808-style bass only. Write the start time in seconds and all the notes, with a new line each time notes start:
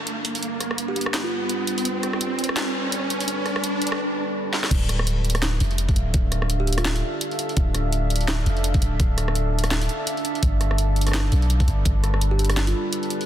4.71 D1
5.61 F1
5.96 D1
6.14 D1
7.57 D1
8.46 F1
8.82 D1
9.00 D1
10.43 G1
11.32 B1
11.68 G1
11.86 G1